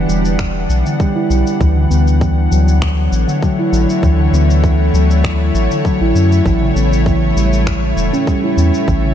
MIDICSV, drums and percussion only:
0, 0, Header, 1, 2, 480
1, 0, Start_track
1, 0, Tempo, 606061
1, 1271, Time_signature, 4, 2, 24, 8
1, 7240, End_track
2, 0, Start_track
2, 0, Title_t, "Drums"
2, 75, Note_on_c, 9, 69, 77
2, 154, Note_off_c, 9, 69, 0
2, 199, Note_on_c, 9, 69, 42
2, 278, Note_off_c, 9, 69, 0
2, 309, Note_on_c, 9, 26, 76
2, 311, Note_on_c, 9, 36, 112
2, 314, Note_on_c, 9, 69, 34
2, 388, Note_off_c, 9, 26, 0
2, 390, Note_off_c, 9, 36, 0
2, 393, Note_off_c, 9, 69, 0
2, 554, Note_on_c, 9, 69, 74
2, 633, Note_off_c, 9, 69, 0
2, 683, Note_on_c, 9, 69, 42
2, 763, Note_off_c, 9, 69, 0
2, 791, Note_on_c, 9, 36, 104
2, 797, Note_on_c, 9, 69, 35
2, 870, Note_off_c, 9, 36, 0
2, 877, Note_off_c, 9, 69, 0
2, 1037, Note_on_c, 9, 69, 75
2, 1116, Note_off_c, 9, 69, 0
2, 1164, Note_on_c, 9, 69, 43
2, 1243, Note_off_c, 9, 69, 0
2, 1272, Note_on_c, 9, 36, 102
2, 1277, Note_on_c, 9, 69, 31
2, 1351, Note_off_c, 9, 36, 0
2, 1356, Note_off_c, 9, 69, 0
2, 1515, Note_on_c, 9, 69, 74
2, 1595, Note_off_c, 9, 69, 0
2, 1644, Note_on_c, 9, 69, 44
2, 1723, Note_off_c, 9, 69, 0
2, 1753, Note_on_c, 9, 36, 100
2, 1757, Note_on_c, 9, 69, 29
2, 1832, Note_off_c, 9, 36, 0
2, 1836, Note_off_c, 9, 69, 0
2, 1997, Note_on_c, 9, 69, 73
2, 2076, Note_off_c, 9, 69, 0
2, 2124, Note_on_c, 9, 69, 42
2, 2203, Note_off_c, 9, 69, 0
2, 2233, Note_on_c, 9, 26, 82
2, 2233, Note_on_c, 9, 36, 105
2, 2238, Note_on_c, 9, 69, 32
2, 2312, Note_off_c, 9, 26, 0
2, 2312, Note_off_c, 9, 36, 0
2, 2317, Note_off_c, 9, 69, 0
2, 2477, Note_on_c, 9, 69, 78
2, 2556, Note_off_c, 9, 69, 0
2, 2605, Note_on_c, 9, 69, 45
2, 2684, Note_off_c, 9, 69, 0
2, 2713, Note_on_c, 9, 36, 93
2, 2719, Note_on_c, 9, 69, 35
2, 2792, Note_off_c, 9, 36, 0
2, 2798, Note_off_c, 9, 69, 0
2, 2959, Note_on_c, 9, 69, 80
2, 3038, Note_off_c, 9, 69, 0
2, 3086, Note_on_c, 9, 69, 42
2, 3166, Note_off_c, 9, 69, 0
2, 3192, Note_on_c, 9, 36, 99
2, 3200, Note_on_c, 9, 69, 33
2, 3271, Note_off_c, 9, 36, 0
2, 3279, Note_off_c, 9, 69, 0
2, 3440, Note_on_c, 9, 69, 74
2, 3519, Note_off_c, 9, 69, 0
2, 3567, Note_on_c, 9, 69, 46
2, 3646, Note_off_c, 9, 69, 0
2, 3672, Note_on_c, 9, 36, 99
2, 3679, Note_on_c, 9, 69, 30
2, 3751, Note_off_c, 9, 36, 0
2, 3758, Note_off_c, 9, 69, 0
2, 3918, Note_on_c, 9, 69, 76
2, 3997, Note_off_c, 9, 69, 0
2, 4046, Note_on_c, 9, 69, 42
2, 4125, Note_off_c, 9, 69, 0
2, 4152, Note_on_c, 9, 36, 109
2, 4155, Note_on_c, 9, 26, 77
2, 4160, Note_on_c, 9, 69, 33
2, 4231, Note_off_c, 9, 36, 0
2, 4235, Note_off_c, 9, 26, 0
2, 4240, Note_off_c, 9, 69, 0
2, 4397, Note_on_c, 9, 69, 75
2, 4476, Note_off_c, 9, 69, 0
2, 4526, Note_on_c, 9, 69, 43
2, 4605, Note_off_c, 9, 69, 0
2, 4632, Note_on_c, 9, 36, 98
2, 4639, Note_on_c, 9, 69, 36
2, 4712, Note_off_c, 9, 36, 0
2, 4718, Note_off_c, 9, 69, 0
2, 4879, Note_on_c, 9, 69, 77
2, 4958, Note_off_c, 9, 69, 0
2, 5007, Note_on_c, 9, 69, 42
2, 5086, Note_off_c, 9, 69, 0
2, 5113, Note_on_c, 9, 36, 100
2, 5122, Note_on_c, 9, 69, 32
2, 5192, Note_off_c, 9, 36, 0
2, 5201, Note_off_c, 9, 69, 0
2, 5360, Note_on_c, 9, 69, 75
2, 5439, Note_off_c, 9, 69, 0
2, 5490, Note_on_c, 9, 69, 42
2, 5569, Note_off_c, 9, 69, 0
2, 5592, Note_on_c, 9, 36, 89
2, 5603, Note_on_c, 9, 69, 30
2, 5672, Note_off_c, 9, 36, 0
2, 5682, Note_off_c, 9, 69, 0
2, 5839, Note_on_c, 9, 69, 74
2, 5919, Note_off_c, 9, 69, 0
2, 5966, Note_on_c, 9, 69, 39
2, 6045, Note_off_c, 9, 69, 0
2, 6073, Note_on_c, 9, 36, 99
2, 6074, Note_on_c, 9, 26, 75
2, 6079, Note_on_c, 9, 69, 33
2, 6152, Note_off_c, 9, 36, 0
2, 6153, Note_off_c, 9, 26, 0
2, 6158, Note_off_c, 9, 69, 0
2, 6318, Note_on_c, 9, 69, 77
2, 6397, Note_off_c, 9, 69, 0
2, 6445, Note_on_c, 9, 69, 45
2, 6524, Note_off_c, 9, 69, 0
2, 6552, Note_on_c, 9, 36, 98
2, 6559, Note_on_c, 9, 69, 33
2, 6631, Note_off_c, 9, 36, 0
2, 6638, Note_off_c, 9, 69, 0
2, 6797, Note_on_c, 9, 69, 75
2, 6876, Note_off_c, 9, 69, 0
2, 6924, Note_on_c, 9, 69, 45
2, 7003, Note_off_c, 9, 69, 0
2, 7032, Note_on_c, 9, 36, 92
2, 7038, Note_on_c, 9, 69, 32
2, 7111, Note_off_c, 9, 36, 0
2, 7117, Note_off_c, 9, 69, 0
2, 7240, End_track
0, 0, End_of_file